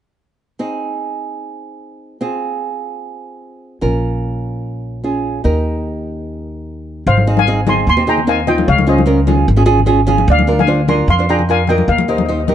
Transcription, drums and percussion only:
7.17 high conga medium
7.37 high conga medium
7.67 high conga medium
7.67 low conga medium
8.18 low conga medium
8.47 low conga medium
8.58 high conga medium
8.78 high conga medium
8.98 high conga medium
9.28 high conga medium
9.28 low conga medium
9.79 low conga medium
10.08 low conga medium
10.18 high conga medium
10.39 high conga medium
10.59 high conga medium
10.88 high conga medium
10.88 low conga medium
11.39 low conga medium
11.67 low conga medium
11.78 high conga medium
11.98 high conga medium
12.18 high conga medium
12.48 high conga medium
12.48 low conga medium

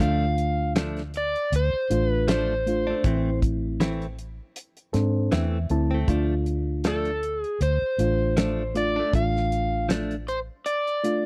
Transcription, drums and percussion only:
0.00 kick loud
0.00 closed hi-hat medium
0.38 closed hi-hat medium
0.76 snare loud
0.76 closed hi-hat medium
0.97 snare soft
0.97 closed hi-hat soft
1.14 closed hi-hat medium
1.36 closed hi-hat soft
1.53 closed hi-hat medium
1.91 closed hi-hat medium
2.28 snare medium
2.28 closed hi-hat medium
2.67 closed hi-hat medium
3.04 kick loud
3.04 closed hi-hat medium
3.42 kick medium
3.42 closed hi-hat medium
3.81 snare loud
3.81 closed hi-hat medium
4.02 closed hi-hat soft
4.19 closed hi-hat medium
4.56 closed hi-hat medium
4.77 closed hi-hat soft
4.94 snare soft
4.94 closed hi-hat medium
5.32 snare loud
5.32 closed hi-hat medium
5.70 closed hi-hat medium
6.08 kick loud
6.08 closed hi-hat medium
6.46 closed hi-hat medium
6.84 snare loud
6.84 closed hi-hat medium
7.05 closed hi-hat soft
7.23 closed hi-hat medium
7.44 closed hi-hat soft
7.61 closed hi-hat medium
7.99 closed hi-hat medium
8.37 snare medium
8.37 closed hi-hat medium
8.75 closed hi-hat medium
9.13 kick loud
9.13 closed hi-hat medium
9.36 snare soft
9.52 closed hi-hat medium
9.90 snare loud
9.90 closed hi-hat medium
10.11 closed hi-hat soft
10.28 closed hi-hat medium
10.66 closed hi-hat medium
10.87 closed hi-hat soft
11.04 closed hi-hat medium

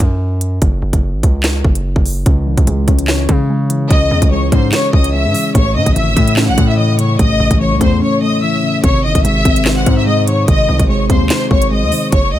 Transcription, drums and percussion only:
0.00 kick loud
0.00 closed hi-hat medium
0.41 closed hi-hat medium
0.62 kick loud
0.62 closed hi-hat medium
0.93 kick medium
0.93 closed hi-hat medium
1.23 kick loud
1.23 closed hi-hat medium
1.43 snare loud
1.43 clap medium
1.43 closed hi-hat medium
1.64 kick loud
1.75 closed hi-hat medium
1.96 kick medium
2.06 open hi-hat medium
2.26 kick loud
2.26 closed hi-hat medium
2.57 kick medium
2.57 closed hi-hat medium
2.67 closed hi-hat medium
2.88 kick loud
2.88 closed hi-hat medium
2.99 closed hi-hat medium
3.08 snare loud
3.08 clap medium
3.29 kick loud
3.29 closed hi-hat medium
3.70 closed hi-hat medium
3.91 kick loud
3.91 closed hi-hat medium
4.22 kick medium
4.22 closed hi-hat medium
4.52 kick loud
4.52 closed hi-hat medium
4.72 snare loud
4.72 clap medium
4.72 closed hi-hat medium
4.93 kick loud
5.04 closed hi-hat medium
5.34 open hi-hat medium
5.55 kick loud
5.55 closed hi-hat medium
5.86 kick medium
5.86 closed hi-hat medium
5.96 closed hi-hat medium
6.17 kick loud
6.17 closed hi-hat medium
6.27 closed hi-hat medium
6.37 snare loud
6.37 clap medium
6.58 kick loud
6.58 closed hi-hat medium
6.99 closed hi-hat medium
7.19 kick loud
7.19 closed hi-hat medium
7.51 kick medium
7.51 closed hi-hat medium
7.81 kick loud
7.81 closed hi-hat medium
8.84 kick loud
8.84 closed hi-hat medium
9.15 kick medium
9.15 closed hi-hat medium
9.25 closed hi-hat medium
9.45 kick loud
9.45 closed hi-hat medium
9.56 closed hi-hat medium
9.65 snare loud
9.65 clap medium
9.86 kick loud
9.86 closed hi-hat medium
10.28 closed hi-hat medium
10.48 kick loud
10.48 closed hi-hat medium
10.79 kick medium
10.79 closed hi-hat medium
11.10 kick loud
11.10 closed hi-hat medium
11.30 snare loud
11.30 clap medium
11.30 closed hi-hat medium
11.51 kick loud
11.62 closed hi-hat medium
11.92 open hi-hat medium
12.12 kick loud
12.12 closed hi-hat medium

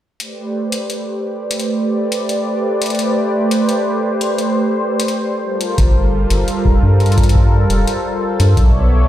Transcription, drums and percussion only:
0.20 closed hi-hat soft
0.72 closed hi-hat medium
0.90 closed hi-hat soft
1.51 closed hi-hat medium
1.60 closed hi-hat soft
2.12 closed hi-hat medium
2.29 closed hi-hat medium
2.82 closed hi-hat medium
2.86 closed hi-hat soft
2.90 closed hi-hat soft
2.95 closed hi-hat soft
2.99 closed hi-hat soft
3.51 closed hi-hat medium
3.69 closed hi-hat soft
4.21 closed hi-hat medium
4.38 closed hi-hat soft
5.00 closed hi-hat medium
5.08 closed hi-hat soft
5.61 closed hi-hat medium
5.78 kick loud
5.78 closed hi-hat soft
6.30 closed hi-hat medium
6.48 closed hi-hat soft
6.65 kick medium
7.00 closed hi-hat soft
7.06 closed hi-hat soft
7.12 closed hi-hat soft
7.18 kick loud
7.18 closed hi-hat soft
7.23 closed hi-hat soft
7.29 closed hi-hat medium
7.35 kick medium
7.70 closed hi-hat medium
7.87 closed hi-hat soft
8.40 closed hi-hat medium
8.57 kick loud
8.57 closed hi-hat soft

